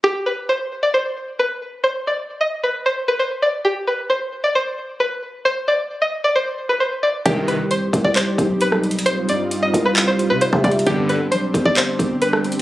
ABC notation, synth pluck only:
X:1
M:4/4
L:1/16
Q:1/4=133
K:Cm
V:1 name="Synth pluck"
G2 =B2 c3 d c4 B4 | c2 d3 e2 =B2 c2 B c2 d2 | G2 =B2 c3 d c4 B4 | c2 d3 e2 d c3 =B c2 d2 |
G2 =B2 c3 d c4 B4 | c2 d3 e2 =B2 c2 B c2 d2 | G2 =B2 c3 d c4 B4 |]